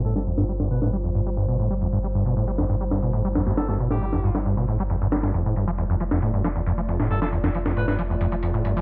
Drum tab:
HH |x-x-x-x-x-xxx-x-|x-x-x-x-x-xxx-x-|x-x-x-x-x-xxx-x-|x-x-x-x-x-xxx-x-|
SD |-o-o-o-o--------|-------o--o---oo|oo-o-o-o------oo|-------o--o----o|

HH |x-x-x-x-x-xxx-x-|
SD |-o-o-o-o--------|